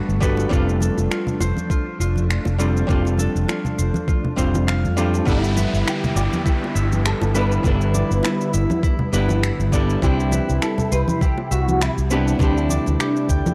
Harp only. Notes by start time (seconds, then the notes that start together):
Already playing: F#4 A4 B4
0.22 B4
0.51 F4
0.81 A4
1.10 F4
1.40 C5
1.70 F4
2.00 F4
2.30 F4
2.59 C5
2.89 F4
3.19 A4
3.48 F4
3.78 C5
4.08 F4
4.37 C5
4.67 F5
4.97 C5
5.26 E4
5.56 B4
5.86 E4
6.16 D5
6.45 E4
6.75 E5
7.05 E4
7.35 B4
7.64 E4
7.94 D5
8.23 E4
8.53 E5
8.83 E4
9.13 B4
9.42 E4
9.73 D5
10.02 E4
10.32 B4
10.62 E4
10.92 C5
11.21 E4
11.51 E5
11.81 E4
12.11 B4
12.40 G4
12.70 D5
13.00 G4
13.30 G5